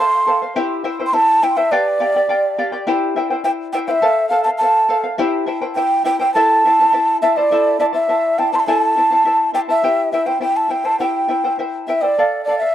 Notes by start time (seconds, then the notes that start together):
0.00 A4 C5 F5 C6
0.27 A4 C5 F5
0.42 C5 F5
0.56 E4 G4 C5 E5 G5
0.84 E4 C5 E5 G5
1.00 E4 C5 G5
1.07 C6
1.13 E4 C5 E5 G5 A5
1.42 E4 C5 E5 G5
1.57 E4 C5 E5 G5
1.71 G4 B4 D5 F5 G5
2.00 G4 D5 F5 G5
2.16 G4 D5 G5
2.29 G4 D5 F5 G5
2.58 G4 D5 F5 G5
2.72 G4 D5 G5
2.87 E4 G4 C5 E5 G5
3.16 E4 C5 E5 G5
3.30 E4 C5 G5
3.44 E4 C5 E5 G5
3.73 E4 C5 E5 G5
3.87 E4 C5 E5 F5 G5
4.02 A4 C5 F5
4.29 A4 C5 F5
4.43 F5 A5
4.48 C5
4.58 A4 A5
4.62 C5 F5
4.89 A4 C5 F5
5.04 C5 F5
5.18 E4 G4 C5 E5 G5
5.46 E4 C5 E5 G5
5.62 E4 C5 G5
5.75 E4 C5 E5 G5
6.04 E4 C5 E5 G5
6.20 E4 C5 G5
6.34 E4 A4 C5 E5 A5
6.65 E4 C5 E5 A5
6.80 E4 C5 A5
6.93 E4 C5 E5 A5
7.22 E4 C5 E5 A5
7.37 E4 C5 D5 A5
7.52 E4 A4 C5 E5 A5
7.80 E4 C5 D5 E5 A5
7.93 E4 C5 E5 A5
8.09 E4 C5 E5 A5
8.38 E4 C5 E5 G5 A5
8.52 E4 C5 A5 C6
8.60 A5
8.67 E4 A4 C5 E5 G#5 A5
8.81 A5
8.97 E4 C5 E5 A5
9.11 E4 C5 A5
9.25 E4 C5 E5 A5
9.53 E4 C5 E5 G5 A5
9.69 E4 C5 E5 A5
9.84 E4 G4 C5 E5 G5
10.12 E4 C5 E5 G5
10.26 E4 C5 G5
10.41 E4 C5 E5 G5
10.56 A5
10.69 E4 C5 E5 G5
10.85 E4 C5 G5 A5
10.99 E4 G4 C5 E5 G5
11.28 E4 C5 E5 G5
11.44 E4 C5 G5
11.59 E4 C5 E5 G5
11.87 E4 C5 E5 G5
12.01 E4 C5 D5 G5
12.18 A4 D5 F5
12.44 A4 D5
12.49 D5 F5
12.58 E5 F5
12.63 D5